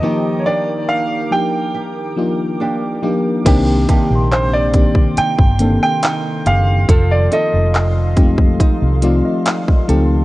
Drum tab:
CC |----------------|x---------------|----------------|
HH |----------------|x-x-x-x-x-x-x-x-|x-x-x-x-x-x-x-x-|
CP |----------------|----x-------x---|----x-------x---|
BD |----------------|o-o---oo-o------|o-----ooo----o--|